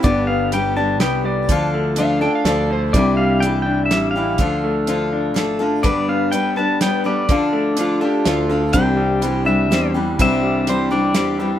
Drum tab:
HH |x-x-x-|x-x-x-|x-x-x-|x-x-x-|
SD |----o-|----o-|----o-|----o-|
BD |o-----|o-----|o-----|o-----|

HH |x-x-x-|x-x-x-|x-x-x-|x-x-x-|
SD |----o-|----o-|----o-|----o-|
BD |o-----|o-----|o-----|o-----|